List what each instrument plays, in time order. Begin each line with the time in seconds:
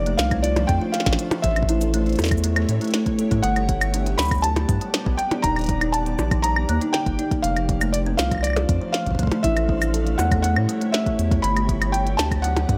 Already playing: analog synth bass F1, ambient pad A3 D4 F4 C5, felt piano D5
0.06 kalimba A3, closed hi-hat
0.17 analog synth bass C2, felt piano F5, snare, cabasa
0.31 kalimba C4, kick, closed hi-hat, claves
0.42 kalimba F4, felt piano D5, closed hi-hat
0.56 kalimba F3, closed hi-hat, percussion blips
0.67 analog synth bass F2, felt piano G5, kick, closed hi-hat
0.81 kalimba F4
0.92 felt piano F5, snare, closed hi-hat
1.00 snare
1.06 analog synth bass A1, kalimba F3, kick, snare, closed hi-hat
1.13 snare
1.19 kalimba F3, closed hi-hat
1.31 kalimba F3, closed hi-hat, percussion blips
1.42 analog synth bass A1, ambient pad A3 E4 G4 C#5, kalimba C#4, felt piano E5, kick, closed hi-hat
1.56 closed hi-hat, claves
1.63 kick
1.69 kalimba E4, closed hi-hat
1.81 kalimba A4, closed hi-hat, cabasa
1.94 kalimba A3, closed hi-hat
2.06 closed hi-hat
2.09 closed hi-hat
2.13 closed hi-hat
2.16 closed hi-hat
2.19 analog synth bass E2, kalimba A4, closed hi-hat, percussion blips, cabasa
2.22 snare, closed hi-hat
2.25 snare, closed hi-hat, cabasa
2.28 kick, snare, closed hi-hat
2.31 closed hi-hat, cabasa, claves
2.38 cabasa
2.44 kalimba A3, closed hi-hat
2.56 kalimba A3, closed hi-hat, claves
2.69 analog synth bass A2, kalimba C#4, closed hi-hat
2.81 kalimba A3, closed hi-hat
2.84 closed hi-hat
2.88 closed hi-hat
2.91 snare, closed hi-hat
2.94 kalimba A3, closed hi-hat
3.06 kalimba B3, kick, closed hi-hat
3.19 kalimba A4, closed hi-hat
3.31 analog synth bass A2, kalimba A3, kick, closed hi-hat
3.42 analog synth bass G1, kalimba G3, ambient pad B3 D5 F#5, felt piano F#5, closed hi-hat
3.56 kalimba G3, closed hi-hat, claves
3.69 kalimba B3, kick, closed hi-hat
3.81 closed hi-hat, cabasa, claves
3.94 kalimba D4, closed hi-hat
4.06 kalimba G4, closed hi-hat
4.18 analog synth bass D2, kalimba F#3, felt piano B5, snare, cabasa
4.22 cabasa
4.25 cabasa
4.28 kick, closed hi-hat, cabasa
4.31 cabasa, claves
4.34 cabasa
4.38 cabasa
4.41 kalimba G4, felt piano A5, closed hi-hat, cabasa
4.56 closed hi-hat, percussion blips
4.69 analog synth bass G2, kalimba G3, kick, closed hi-hat
4.81 kalimba G3, closed hi-hat
4.94 kalimba G3, snare, closed hi-hat
5.06 analog synth bass B1, kalimba B3, kick
5.17 felt piano G5, closed hi-hat
5.31 kalimba D4, closed hi-hat, percussion blips
5.42 analog synth bass D#1, ambient pad A#3, kalimba D#4, felt piano A#5, kick, closed hi-hat
5.56 kalimba D3, closed hi-hat, claves
5.59 closed hi-hat
5.61 closed hi-hat
5.64 closed hi-hat
5.66 kick, closed hi-hat
5.69 closed hi-hat
5.81 kalimba D#4, closed hi-hat, claves
5.92 felt piano A5, closed hi-hat
6.06 kalimba D#3, closed hi-hat
6.19 analog synth bass A#1, kalimba D#3, percussion blips, cabasa
6.31 kalimba D#3, kick, closed hi-hat, claves
6.42 kalimba G3, felt piano A#5, closed hi-hat
6.56 claves
6.69 analog synth bass D#2, kalimba A#3, closed hi-hat
6.81 kalimba D#4, closed hi-hat
6.93 kalimba D3, felt piano G5, snare, closed hi-hat
7.06 analog synth bass G1, kick, closed hi-hat
7.19 kalimba D#4, closed hi-hat
7.31 kick, closed hi-hat
7.42 analog synth bass F1, kalimba F3, ambient pad A3 D4 C5 F5, felt piano F5, closed hi-hat
7.56 kalimba F3, closed hi-hat, claves
7.69 kalimba F3, kick, closed hi-hat
7.81 kalimba A3, closed hi-hat, cabasa, claves
7.92 felt piano D5, closed hi-hat
8.06 kalimba C4
8.17 analog synth bass C2, kalimba F4, felt piano F5, snare, cabasa
8.31 kalimba E3, kick, closed hi-hat, claves
8.35 claves
8.38 claves
8.41 felt piano D5, closed hi-hat, claves
8.44 claves
8.47 claves
8.50 claves
8.53 kalimba F4, closed hi-hat, percussion blips, claves
8.69 analog synth bass F2, kick, closed hi-hat
8.81 kalimba F3
8.93 kalimba F3, felt piano F5, snare, closed hi-hat
9.06 analog synth bass A1, kalimba F3, kick, closed hi-hat
9.11 kick
9.15 kick
9.19 kalimba A3, kick, closed hi-hat
9.23 kick
9.27 kick
9.32 closed hi-hat, percussion blips
9.43 analog synth bass A1, ambient pad E4 G4 C#5, kalimba E4, felt piano E5, kick, closed hi-hat
9.56 kalimba A4, closed hi-hat, claves
9.69 kalimba G3, kick
9.82 closed hi-hat, cabasa, claves
9.94 kalimba A4, closed hi-hat
10.07 closed hi-hat
10.18 analog synth bass E2, kalimba A3, felt piano F#5, percussion blips, cabasa
10.31 kalimba A3, kick, closed hi-hat, claves
10.42 kalimba A3, felt piano F#5, closed hi-hat
10.56 analog synth bass A2, kalimba C#4, claves
10.69 kalimba G3, closed hi-hat
10.81 kalimba A3, closed hi-hat
10.92 kalimba A3, felt piano E5, snare, closed hi-hat
11.06 kalimba A3, kick, closed hi-hat
11.19 analog synth bass E2, closed hi-hat
11.31 kalimba A3, kick, closed hi-hat
11.42 analog synth bass G1, ambient pad B3 D5 F#5, kalimba B3, felt piano B5, closed hi-hat
11.56 kalimba G3, closed hi-hat, claves
11.69 kalimba G3, kick, closed hi-hat
11.81 kalimba G3, closed hi-hat, claves
11.92 felt piano G5, closed hi-hat
12.07 closed hi-hat
12.17 analog synth bass D2, kalimba D4, felt piano A5, snare, cabasa
12.31 kalimba G4, kick, closed hi-hat, claves
12.42 kalimba F#3, felt piano F#5, closed hi-hat
12.57 closed hi-hat, percussion blips
12.69 analog synth bass G2, kalimba G4, kick, closed hi-hat